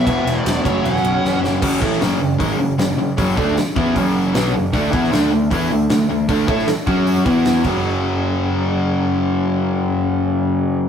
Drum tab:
CC |----------------|x---------------|----------------|----------------|
RD |x-x-x-x-x-x-----|----------------|----------------|----------------|
HH |----------------|----o---o---o---|o---o---o---o---|o---o---o---o---|
SD |----o----o--o-o-|---oo-------o---|----o-------o---|---oo-------o---|
BD |o-----o---------|o-o-----o-------|o-o---o-o-------|o-o-----o-------|

CC |--------------x-|----------------|----------------|
RD |----------------|----------------|----------------|
HH |o---o---o---o---|----------------|----------------|
SD |---oo-------o---|----------------|----------------|
BD |o-o---o---o---o-|----------------|----------------|